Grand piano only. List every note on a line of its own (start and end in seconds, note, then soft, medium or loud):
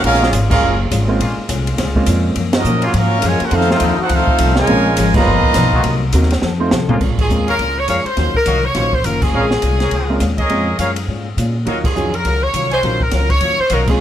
1.08 1.18 G#3 medium
1.08 1.19 A#3 medium
1.08 1.19 C4 medium
1.08 1.19 C#4 medium
1.08 1.19 F4 medium
1.96 2.34 G#3 medium
1.96 2.34 A#3 medium
1.96 2.34 C4 medium
1.96 2.34 C#4 medium
1.96 2.34 F4 medium
3.52 3.68 A3 medium
3.52 3.68 C4 medium
3.52 3.68 D#4 medium
3.52 3.68 F4 medium
3.52 3.68 A4 medium
4.69 4.84 G#3 medium
4.69 4.84 C4 medium
4.69 4.85 C#4 medium
4.69 4.85 F4 medium
4.69 4.85 A#4 medium
5.15 5.25 G3 medium
5.15 5.25 B3 medium
5.15 5.25 D#4 medium
5.15 5.25 F4 medium
5.15 5.26 C#5 medium
6.14 6.30 A#3 medium
6.14 6.29 C4 medium
6.14 6.30 D#4 medium
6.14 6.30 F#4 medium
6.14 6.30 A#4 medium
6.60 6.70 A3 medium
6.60 6.70 C4 medium
6.60 6.70 D#4 medium
6.60 6.71 F4 medium
6.60 6.70 C5 medium
6.89 6.99 G#3 medium
6.89 7.00 C4 medium
6.89 7.00 C#4 medium
6.89 7.00 F4 medium
6.89 7.00 A#4 medium
7.30 7.46 G#3 medium
7.30 7.46 C4 soft
7.30 7.46 C#4 soft
7.30 7.46 F4 medium
7.30 7.46 A#4 medium
8.17 8.33 F#3 soft
8.17 8.33 C#4 soft
8.17 8.33 D#4 soft
8.17 8.33 F4 soft
8.17 8.33 A#4 medium
8.76 8.91 F#3 medium
8.76 8.91 C#4 medium
8.76 8.91 D#4 medium
8.76 8.91 F4 medium
8.76 8.91 C5 medium
9.34 9.49 G#3 medium
9.34 9.49 C4 soft
9.34 9.50 C#4 medium
9.34 9.50 F4 medium
9.34 9.50 A#4 medium
10.10 10.20 G#3 medium
10.10 10.20 C4 medium
10.10 10.20 C#4 medium
10.10 10.20 F4 medium
10.10 10.20 A#4 medium
10.50 10.66 G#3 medium
10.50 10.66 C4 medium
10.50 10.66 C#4 medium
10.50 10.66 F4 medium
10.50 10.66 A#4 medium
11.66 11.82 F#3 medium
11.66 11.82 C#4 medium
11.66 11.82 D#4 medium
11.66 11.82 F4 medium
11.66 11.82 A#4 medium
11.95 12.11 F#3 medium
11.95 12.11 C#4 medium
11.95 12.11 D#4 medium
11.95 12.11 F4 medium
11.95 12.11 G#4 medium
12.83 12.99 F#3 medium
12.83 12.99 C#4 soft
12.83 12.99 D#4 medium
12.83 12.99 F4 medium
12.83 12.99 A#4 medium
13.88 13.98 G#3 medium
13.88 13.98 C4 medium
13.88 13.98 C#4 medium
13.88 13.98 F4 medium
13.88 13.99 C#5 medium